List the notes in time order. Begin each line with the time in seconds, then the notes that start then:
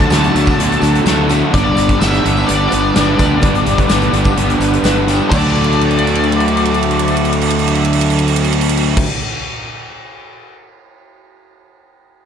Already playing: D3 F#3 A3 B3 D4 F#4 A4
0.00 kick, closed hi-hat
0.09 D2 D3 F#3 A3 D4 F#4, snare, closed hi-hat, tambourine
0.13 A3 D4 A5
0.24 closed hi-hat
0.33 D2 D3 F#3 A3 D4, closed hi-hat
0.46 kick, snare, tambourine
0.57 D2 D3 F#3 A3 D4 F#4, closed hi-hat
0.70 closed hi-hat, tambourine
0.81 D2 D3 F#3 A3 D4 A4, closed hi-hat, tambourine
0.93 closed hi-hat, tambourine
1.04 D2 D3 F#3 A3 D4 A4, snare, closed hi-hat, tambourine
1.28 D3 F#3 A3 D4 F#4, closed hi-hat, tambourine
1.51 G1 G2 D3 G3 B3 D4 B4 D5, kick, closed hi-hat
1.66 tambourine
1.76 G1 G2 D3 G3 B3 D4, closed hi-hat, tambourine
1.89 kick, closed hi-hat
2.00 G1 G2 D3 G3 B3 D4 G4 E5, snare, closed hi-hat, tambourine
2.14 closed hi-hat, tambourine
2.24 G1 G2 D3 G3 B3 D4, closed hi-hat
2.37 tambourine
2.46 G1 G2 D3 G3 B3 D4 G4 D5, closed hi-hat
2.61 tambourine
2.70 G1 G2 D3 G3 B3 D4 B4, closed hi-hat, tambourine
2.85 tambourine
2.95 G1 G2 D3 G3 B4, snare, closed hi-hat, tambourine
2.99 B3 D4
3.18 D2 G2 D3 G3 B3 D4 G4, kick, closed hi-hat, tambourine
3.41 G1 G2 D3 G3 B3 D4 D5, kick, closed hi-hat, tambourine
3.54 closed hi-hat, tambourine
3.65 G1 G2 D3 G3 B3 D4, closed hi-hat, tambourine
3.78 kick, closed hi-hat, tambourine
3.88 G1 G2 D3 G3 B3 D4 G4, snare, closed hi-hat, tambourine
4.01 closed hi-hat, tambourine
4.12 G1 G2 D3 G3 B3 D4, closed hi-hat, tambourine
4.24 kick, tambourine
4.36 G1 G2 D3 G3 B3 D4 G4, closed hi-hat
4.49 closed hi-hat, tambourine
4.59 G1 G2 D3 G3 B3 D4 B4, closed hi-hat, tambourine
4.73 closed hi-hat, tambourine
4.83 G1 G2 D3 G3 B3 D4 B4, snare, closed hi-hat, tambourine
5.07 G2 D3 G3 B3 D4 G4, closed hi-hat, tambourine
5.29 D2 D3 F#3 A3 D4 D5, kick, crash, tambourine
5.33 D3 D4 F#4
5.55 crash
5.64 ride
5.73 crash
5.81 ride
5.91 crash
5.99 ride
6.07 crash
6.15 ride
6.24 crash
6.32 ride
6.40 crash
6.48 ride
6.57 crash
6.65 ride
6.74 crash
6.83 ride
6.91 crash
6.99 ride
7.08 crash
7.17 ride
7.25 crash
7.33 ride
7.42 crash
7.50 ride
7.59 crash
7.68 ride
7.75 crash
7.85 ride
7.93 crash
8.01 ride
8.10 crash
8.19 ride
8.28 crash
8.36 ride
8.44 crash
8.53 ride
8.61 crash
8.69 ride
8.77 crash
8.97 kick, crash